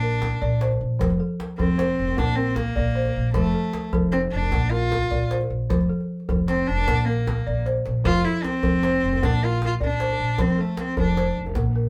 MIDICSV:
0, 0, Header, 1, 5, 480
1, 0, Start_track
1, 0, Key_signature, -1, "major"
1, 0, Tempo, 391134
1, 1232, Time_signature, 12, 3, 24, 8
1, 14591, End_track
2, 0, Start_track
2, 0, Title_t, "Balafon"
2, 0, Program_c, 0, 12
2, 0, Note_on_c, 0, 58, 74
2, 34, Note_on_c, 0, 70, 67
2, 273, Note_off_c, 0, 58, 0
2, 509, Note_on_c, 0, 74, 80
2, 753, Note_off_c, 0, 70, 0
2, 753, Note_on_c, 0, 72, 67
2, 990, Note_off_c, 0, 74, 0
2, 1219, Note_on_c, 0, 53, 84
2, 1469, Note_on_c, 0, 69, 70
2, 1473, Note_off_c, 0, 72, 0
2, 1705, Note_off_c, 0, 53, 0
2, 1928, Note_off_c, 0, 69, 0
2, 1943, Note_on_c, 0, 69, 70
2, 1946, Note_on_c, 0, 53, 81
2, 2184, Note_on_c, 0, 72, 75
2, 2429, Note_off_c, 0, 53, 0
2, 2663, Note_on_c, 0, 58, 83
2, 2668, Note_off_c, 0, 69, 0
2, 2903, Note_on_c, 0, 70, 62
2, 2908, Note_off_c, 0, 72, 0
2, 3148, Note_off_c, 0, 58, 0
2, 3382, Note_on_c, 0, 74, 80
2, 3625, Note_on_c, 0, 72, 71
2, 3629, Note_off_c, 0, 70, 0
2, 3868, Note_off_c, 0, 74, 0
2, 4104, Note_on_c, 0, 53, 84
2, 4348, Note_on_c, 0, 69, 71
2, 4350, Note_off_c, 0, 72, 0
2, 4589, Note_off_c, 0, 53, 0
2, 4808, Note_off_c, 0, 69, 0
2, 4820, Note_on_c, 0, 53, 84
2, 4823, Note_on_c, 0, 69, 75
2, 5063, Note_on_c, 0, 72, 68
2, 5308, Note_off_c, 0, 53, 0
2, 5548, Note_on_c, 0, 58, 74
2, 5550, Note_off_c, 0, 69, 0
2, 5785, Note_on_c, 0, 70, 71
2, 5790, Note_off_c, 0, 72, 0
2, 6032, Note_off_c, 0, 58, 0
2, 6269, Note_on_c, 0, 74, 74
2, 6511, Note_off_c, 0, 70, 0
2, 6513, Note_on_c, 0, 72, 70
2, 6753, Note_off_c, 0, 74, 0
2, 6992, Note_on_c, 0, 53, 88
2, 7233, Note_on_c, 0, 69, 63
2, 7235, Note_off_c, 0, 72, 0
2, 7475, Note_off_c, 0, 53, 0
2, 7703, Note_off_c, 0, 69, 0
2, 7717, Note_on_c, 0, 69, 68
2, 7718, Note_on_c, 0, 53, 75
2, 7950, Note_on_c, 0, 72, 69
2, 8198, Note_off_c, 0, 53, 0
2, 8434, Note_on_c, 0, 58, 78
2, 8438, Note_off_c, 0, 69, 0
2, 8674, Note_off_c, 0, 72, 0
2, 8682, Note_on_c, 0, 70, 70
2, 8916, Note_off_c, 0, 58, 0
2, 9162, Note_on_c, 0, 74, 78
2, 9399, Note_on_c, 0, 72, 74
2, 9400, Note_off_c, 0, 70, 0
2, 9640, Note_off_c, 0, 74, 0
2, 9870, Note_on_c, 0, 53, 90
2, 10114, Note_on_c, 0, 69, 67
2, 10118, Note_off_c, 0, 72, 0
2, 10354, Note_off_c, 0, 53, 0
2, 10581, Note_off_c, 0, 69, 0
2, 10593, Note_on_c, 0, 53, 78
2, 10596, Note_on_c, 0, 69, 68
2, 10844, Note_on_c, 0, 72, 69
2, 11075, Note_off_c, 0, 53, 0
2, 11316, Note_off_c, 0, 69, 0
2, 11321, Note_on_c, 0, 58, 86
2, 11560, Note_off_c, 0, 72, 0
2, 11566, Note_on_c, 0, 70, 61
2, 11798, Note_off_c, 0, 58, 0
2, 12031, Note_on_c, 0, 74, 76
2, 12271, Note_on_c, 0, 72, 66
2, 12280, Note_off_c, 0, 70, 0
2, 12513, Note_off_c, 0, 74, 0
2, 12750, Note_on_c, 0, 53, 86
2, 12984, Note_on_c, 0, 69, 68
2, 12992, Note_off_c, 0, 72, 0
2, 13231, Note_off_c, 0, 53, 0
2, 13452, Note_off_c, 0, 69, 0
2, 13467, Note_on_c, 0, 53, 83
2, 13467, Note_on_c, 0, 69, 67
2, 13706, Note_on_c, 0, 72, 65
2, 13949, Note_off_c, 0, 53, 0
2, 14183, Note_on_c, 0, 58, 85
2, 14188, Note_off_c, 0, 69, 0
2, 14426, Note_on_c, 0, 70, 64
2, 14427, Note_off_c, 0, 72, 0
2, 14591, Note_off_c, 0, 58, 0
2, 14591, Note_off_c, 0, 70, 0
2, 14591, End_track
3, 0, Start_track
3, 0, Title_t, "Cello"
3, 0, Program_c, 1, 42
3, 0, Note_on_c, 1, 62, 97
3, 764, Note_off_c, 1, 62, 0
3, 1940, Note_on_c, 1, 60, 85
3, 2678, Note_on_c, 1, 62, 96
3, 2697, Note_off_c, 1, 60, 0
3, 2892, Note_on_c, 1, 60, 86
3, 2911, Note_off_c, 1, 62, 0
3, 3134, Note_on_c, 1, 58, 94
3, 3152, Note_off_c, 1, 60, 0
3, 4085, Note_off_c, 1, 58, 0
3, 4093, Note_on_c, 1, 57, 102
3, 4775, Note_off_c, 1, 57, 0
3, 5054, Note_on_c, 1, 60, 94
3, 5167, Note_off_c, 1, 60, 0
3, 5298, Note_on_c, 1, 62, 97
3, 5776, Note_on_c, 1, 65, 115
3, 5795, Note_off_c, 1, 62, 0
3, 6507, Note_off_c, 1, 65, 0
3, 7954, Note_on_c, 1, 60, 94
3, 8188, Note_on_c, 1, 62, 111
3, 8207, Note_off_c, 1, 60, 0
3, 8655, Note_on_c, 1, 58, 89
3, 8673, Note_off_c, 1, 62, 0
3, 9386, Note_off_c, 1, 58, 0
3, 9885, Note_on_c, 1, 65, 117
3, 10120, Note_on_c, 1, 64, 101
3, 10139, Note_off_c, 1, 65, 0
3, 10350, Note_on_c, 1, 60, 109
3, 10368, Note_off_c, 1, 64, 0
3, 11341, Note_on_c, 1, 62, 101
3, 11360, Note_off_c, 1, 60, 0
3, 11593, Note_on_c, 1, 65, 98
3, 11612, Note_off_c, 1, 62, 0
3, 11815, Note_off_c, 1, 65, 0
3, 11855, Note_on_c, 1, 65, 91
3, 11949, Note_off_c, 1, 65, 0
3, 12077, Note_on_c, 1, 62, 93
3, 12775, Note_on_c, 1, 60, 90
3, 12794, Note_off_c, 1, 62, 0
3, 13015, Note_on_c, 1, 57, 82
3, 13033, Note_off_c, 1, 60, 0
3, 13253, Note_on_c, 1, 60, 94
3, 13271, Note_off_c, 1, 57, 0
3, 13482, Note_off_c, 1, 60, 0
3, 13498, Note_on_c, 1, 62, 78
3, 13931, Note_off_c, 1, 62, 0
3, 14591, End_track
4, 0, Start_track
4, 0, Title_t, "Upright bass"
4, 0, Program_c, 2, 32
4, 0, Note_on_c, 2, 34, 93
4, 425, Note_off_c, 2, 34, 0
4, 513, Note_on_c, 2, 34, 90
4, 935, Note_off_c, 2, 34, 0
4, 992, Note_on_c, 2, 34, 79
4, 1203, Note_off_c, 2, 34, 0
4, 1233, Note_on_c, 2, 29, 93
4, 1443, Note_off_c, 2, 29, 0
4, 1961, Note_on_c, 2, 29, 92
4, 2379, Note_off_c, 2, 29, 0
4, 2444, Note_on_c, 2, 29, 83
4, 2650, Note_off_c, 2, 29, 0
4, 2682, Note_on_c, 2, 34, 90
4, 3311, Note_off_c, 2, 34, 0
4, 3403, Note_on_c, 2, 34, 87
4, 3821, Note_off_c, 2, 34, 0
4, 3881, Note_on_c, 2, 34, 84
4, 4089, Note_off_c, 2, 34, 0
4, 4115, Note_on_c, 2, 29, 96
4, 4325, Note_off_c, 2, 29, 0
4, 4838, Note_on_c, 2, 29, 94
4, 5259, Note_off_c, 2, 29, 0
4, 5317, Note_on_c, 2, 29, 89
4, 5527, Note_off_c, 2, 29, 0
4, 5561, Note_on_c, 2, 34, 95
4, 6192, Note_off_c, 2, 34, 0
4, 6269, Note_on_c, 2, 34, 88
4, 6695, Note_off_c, 2, 34, 0
4, 6752, Note_on_c, 2, 34, 80
4, 6965, Note_off_c, 2, 34, 0
4, 6995, Note_on_c, 2, 29, 90
4, 7207, Note_off_c, 2, 29, 0
4, 7728, Note_on_c, 2, 29, 87
4, 8145, Note_off_c, 2, 29, 0
4, 8207, Note_on_c, 2, 29, 85
4, 8414, Note_off_c, 2, 29, 0
4, 8446, Note_on_c, 2, 34, 91
4, 9076, Note_off_c, 2, 34, 0
4, 9169, Note_on_c, 2, 34, 88
4, 9586, Note_off_c, 2, 34, 0
4, 9646, Note_on_c, 2, 34, 86
4, 9853, Note_off_c, 2, 34, 0
4, 9888, Note_on_c, 2, 29, 97
4, 10094, Note_off_c, 2, 29, 0
4, 10607, Note_on_c, 2, 29, 94
4, 11024, Note_off_c, 2, 29, 0
4, 11083, Note_on_c, 2, 29, 88
4, 11291, Note_off_c, 2, 29, 0
4, 11318, Note_on_c, 2, 34, 93
4, 11950, Note_off_c, 2, 34, 0
4, 12044, Note_on_c, 2, 34, 82
4, 12461, Note_off_c, 2, 34, 0
4, 12516, Note_on_c, 2, 34, 81
4, 12726, Note_off_c, 2, 34, 0
4, 12762, Note_on_c, 2, 29, 89
4, 12969, Note_off_c, 2, 29, 0
4, 13478, Note_on_c, 2, 29, 93
4, 13897, Note_off_c, 2, 29, 0
4, 13950, Note_on_c, 2, 29, 88
4, 14161, Note_off_c, 2, 29, 0
4, 14195, Note_on_c, 2, 34, 96
4, 14591, Note_off_c, 2, 34, 0
4, 14591, End_track
5, 0, Start_track
5, 0, Title_t, "Djembe"
5, 267, Note_on_c, 9, 62, 74
5, 267, Note_on_c, 9, 63, 68
5, 389, Note_off_c, 9, 62, 0
5, 389, Note_off_c, 9, 63, 0
5, 515, Note_on_c, 9, 62, 22
5, 515, Note_on_c, 9, 64, 67
5, 638, Note_off_c, 9, 62, 0
5, 638, Note_off_c, 9, 64, 0
5, 750, Note_on_c, 9, 62, 69
5, 872, Note_off_c, 9, 62, 0
5, 875, Note_on_c, 9, 63, 55
5, 997, Note_off_c, 9, 63, 0
5, 1237, Note_on_c, 9, 62, 79
5, 1237, Note_on_c, 9, 64, 71
5, 1353, Note_on_c, 9, 63, 60
5, 1360, Note_off_c, 9, 62, 0
5, 1360, Note_off_c, 9, 64, 0
5, 1475, Note_off_c, 9, 63, 0
5, 1716, Note_on_c, 9, 62, 67
5, 1839, Note_off_c, 9, 62, 0
5, 1839, Note_on_c, 9, 62, 25
5, 1955, Note_on_c, 9, 63, 65
5, 1955, Note_on_c, 9, 64, 68
5, 1961, Note_off_c, 9, 62, 0
5, 2078, Note_off_c, 9, 63, 0
5, 2078, Note_off_c, 9, 64, 0
5, 2196, Note_on_c, 9, 62, 76
5, 2319, Note_off_c, 9, 62, 0
5, 2554, Note_on_c, 9, 63, 59
5, 2677, Note_off_c, 9, 63, 0
5, 2677, Note_on_c, 9, 62, 75
5, 2677, Note_on_c, 9, 64, 76
5, 2794, Note_off_c, 9, 62, 0
5, 2794, Note_on_c, 9, 62, 23
5, 2800, Note_off_c, 9, 64, 0
5, 2908, Note_off_c, 9, 62, 0
5, 2908, Note_on_c, 9, 62, 23
5, 3031, Note_off_c, 9, 62, 0
5, 3143, Note_on_c, 9, 62, 68
5, 3143, Note_on_c, 9, 63, 72
5, 3266, Note_off_c, 9, 62, 0
5, 3266, Note_off_c, 9, 63, 0
5, 3387, Note_on_c, 9, 62, 23
5, 3387, Note_on_c, 9, 64, 74
5, 3510, Note_off_c, 9, 62, 0
5, 3510, Note_off_c, 9, 64, 0
5, 3747, Note_on_c, 9, 63, 60
5, 3870, Note_off_c, 9, 63, 0
5, 4101, Note_on_c, 9, 62, 73
5, 4101, Note_on_c, 9, 64, 78
5, 4219, Note_on_c, 9, 63, 59
5, 4224, Note_off_c, 9, 62, 0
5, 4224, Note_off_c, 9, 64, 0
5, 4341, Note_off_c, 9, 63, 0
5, 4582, Note_on_c, 9, 62, 70
5, 4705, Note_off_c, 9, 62, 0
5, 4705, Note_on_c, 9, 62, 26
5, 4820, Note_on_c, 9, 63, 68
5, 4820, Note_on_c, 9, 64, 73
5, 4828, Note_off_c, 9, 62, 0
5, 4943, Note_off_c, 9, 63, 0
5, 4943, Note_off_c, 9, 64, 0
5, 5062, Note_on_c, 9, 62, 71
5, 5184, Note_off_c, 9, 62, 0
5, 5428, Note_on_c, 9, 63, 57
5, 5546, Note_on_c, 9, 62, 73
5, 5546, Note_on_c, 9, 64, 73
5, 5551, Note_off_c, 9, 63, 0
5, 5668, Note_off_c, 9, 62, 0
5, 5668, Note_off_c, 9, 64, 0
5, 6036, Note_on_c, 9, 62, 66
5, 6036, Note_on_c, 9, 63, 70
5, 6158, Note_off_c, 9, 62, 0
5, 6158, Note_off_c, 9, 63, 0
5, 6284, Note_on_c, 9, 62, 24
5, 6284, Note_on_c, 9, 64, 73
5, 6406, Note_off_c, 9, 62, 0
5, 6406, Note_off_c, 9, 64, 0
5, 6516, Note_on_c, 9, 62, 68
5, 6637, Note_on_c, 9, 63, 63
5, 6638, Note_off_c, 9, 62, 0
5, 6760, Note_off_c, 9, 63, 0
5, 6998, Note_on_c, 9, 62, 73
5, 6998, Note_on_c, 9, 64, 73
5, 7121, Note_off_c, 9, 62, 0
5, 7121, Note_off_c, 9, 64, 0
5, 7127, Note_on_c, 9, 63, 57
5, 7250, Note_off_c, 9, 63, 0
5, 7368, Note_on_c, 9, 62, 27
5, 7491, Note_off_c, 9, 62, 0
5, 7607, Note_on_c, 9, 62, 26
5, 7717, Note_off_c, 9, 62, 0
5, 7717, Note_on_c, 9, 62, 21
5, 7717, Note_on_c, 9, 63, 69
5, 7717, Note_on_c, 9, 64, 75
5, 7840, Note_off_c, 9, 62, 0
5, 7840, Note_off_c, 9, 63, 0
5, 7840, Note_off_c, 9, 64, 0
5, 7954, Note_on_c, 9, 62, 81
5, 8077, Note_off_c, 9, 62, 0
5, 8320, Note_on_c, 9, 63, 64
5, 8440, Note_on_c, 9, 62, 81
5, 8440, Note_on_c, 9, 64, 82
5, 8443, Note_off_c, 9, 63, 0
5, 8556, Note_off_c, 9, 62, 0
5, 8556, Note_on_c, 9, 62, 25
5, 8562, Note_off_c, 9, 64, 0
5, 8679, Note_off_c, 9, 62, 0
5, 8803, Note_on_c, 9, 62, 22
5, 8926, Note_off_c, 9, 62, 0
5, 8926, Note_on_c, 9, 62, 78
5, 8926, Note_on_c, 9, 63, 73
5, 9049, Note_off_c, 9, 62, 0
5, 9049, Note_off_c, 9, 63, 0
5, 9167, Note_on_c, 9, 64, 39
5, 9289, Note_off_c, 9, 64, 0
5, 9404, Note_on_c, 9, 62, 47
5, 9527, Note_off_c, 9, 62, 0
5, 9640, Note_on_c, 9, 62, 51
5, 9763, Note_off_c, 9, 62, 0
5, 9881, Note_on_c, 9, 62, 88
5, 9881, Note_on_c, 9, 64, 83
5, 10000, Note_on_c, 9, 63, 67
5, 10004, Note_off_c, 9, 62, 0
5, 10004, Note_off_c, 9, 64, 0
5, 10123, Note_off_c, 9, 63, 0
5, 10361, Note_on_c, 9, 62, 75
5, 10484, Note_off_c, 9, 62, 0
5, 10592, Note_on_c, 9, 63, 68
5, 10592, Note_on_c, 9, 64, 82
5, 10715, Note_off_c, 9, 63, 0
5, 10715, Note_off_c, 9, 64, 0
5, 10838, Note_on_c, 9, 62, 83
5, 10960, Note_off_c, 9, 62, 0
5, 11202, Note_on_c, 9, 63, 63
5, 11324, Note_off_c, 9, 63, 0
5, 11329, Note_on_c, 9, 62, 80
5, 11329, Note_on_c, 9, 64, 85
5, 11438, Note_off_c, 9, 62, 0
5, 11438, Note_on_c, 9, 62, 23
5, 11452, Note_off_c, 9, 64, 0
5, 11561, Note_off_c, 9, 62, 0
5, 11803, Note_on_c, 9, 62, 75
5, 11926, Note_off_c, 9, 62, 0
5, 12038, Note_on_c, 9, 62, 25
5, 12038, Note_on_c, 9, 64, 76
5, 12161, Note_off_c, 9, 62, 0
5, 12161, Note_off_c, 9, 64, 0
5, 12273, Note_on_c, 9, 62, 63
5, 12386, Note_on_c, 9, 63, 61
5, 12396, Note_off_c, 9, 62, 0
5, 12509, Note_off_c, 9, 63, 0
5, 12744, Note_on_c, 9, 62, 69
5, 12744, Note_on_c, 9, 64, 70
5, 12862, Note_on_c, 9, 63, 62
5, 12867, Note_off_c, 9, 62, 0
5, 12867, Note_off_c, 9, 64, 0
5, 12985, Note_off_c, 9, 63, 0
5, 13221, Note_on_c, 9, 62, 77
5, 13344, Note_off_c, 9, 62, 0
5, 13348, Note_on_c, 9, 62, 24
5, 13463, Note_on_c, 9, 63, 72
5, 13463, Note_on_c, 9, 64, 66
5, 13471, Note_off_c, 9, 62, 0
5, 13586, Note_off_c, 9, 63, 0
5, 13586, Note_off_c, 9, 64, 0
5, 13712, Note_on_c, 9, 62, 80
5, 13835, Note_off_c, 9, 62, 0
5, 14066, Note_on_c, 9, 63, 61
5, 14177, Note_on_c, 9, 62, 67
5, 14177, Note_on_c, 9, 64, 75
5, 14188, Note_off_c, 9, 63, 0
5, 14300, Note_off_c, 9, 62, 0
5, 14300, Note_off_c, 9, 64, 0
5, 14305, Note_on_c, 9, 62, 21
5, 14428, Note_off_c, 9, 62, 0
5, 14430, Note_on_c, 9, 62, 22
5, 14553, Note_off_c, 9, 62, 0
5, 14591, End_track
0, 0, End_of_file